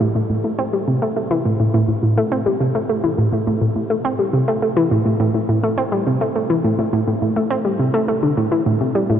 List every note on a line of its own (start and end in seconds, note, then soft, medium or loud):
0.01 0.10 A2 loud
0.15 0.21 A2 medium
0.30 0.43 A2 medium
0.44 0.50 A3 medium
0.59 0.64 C4 loud
0.73 0.87 G3 medium
0.87 0.97 C3 medium
1.02 1.15 A3 medium
1.16 1.30 A3 medium
1.31 1.36 E3 loud
1.45 1.55 A2 medium
1.60 1.69 A2 medium
1.74 1.84 A2 loud
1.88 1.94 A2 medium
2.03 2.16 A2 medium
2.18 2.23 A3 medium
2.32 2.38 C4 loud
2.46 2.60 G3 medium
2.60 2.70 C3 medium
2.75 2.88 A3 medium
2.89 3.03 A3 medium
3.04 3.10 E3 loud
3.18 3.28 A2 medium
3.32 3.42 A2 medium
3.47 3.57 A2 loud
3.61 3.67 A2 medium
3.76 3.89 A2 medium
3.90 3.96 A3 medium
4.05 4.10 C4 loud
4.19 4.33 G3 medium
4.33 4.43 C3 medium
4.48 4.61 A3 medium
4.62 4.76 A3 medium
4.77 4.83 E3 loud
4.91 5.01 A2 medium
5.05 5.15 A2 medium
5.20 5.30 A2 loud
5.34 5.40 A2 medium
5.49 5.63 A2 medium
5.63 5.69 A3 medium
5.78 5.84 C4 loud
5.92 6.06 G3 medium
6.07 6.16 C3 medium
6.21 6.35 A3 medium
6.36 6.49 A3 medium
6.50 6.56 E3 loud
6.64 6.74 A2 medium
6.79 6.88 A2 medium
6.93 7.03 A2 medium
7.07 7.13 A2 medium
7.22 7.36 A2 medium
7.36 7.42 A3 medium
7.50 7.56 C4 loud
7.65 7.79 G3 medium
7.79 7.89 C3 medium
7.94 8.07 A3 medium
8.08 8.22 A3 medium
8.23 8.33 D3 medium
8.37 8.47 A2 medium
8.52 8.61 E3 medium
8.66 8.76 A2 medium
8.81 8.90 C3 medium
8.95 9.05 G3 medium
9.10 9.19 A2 medium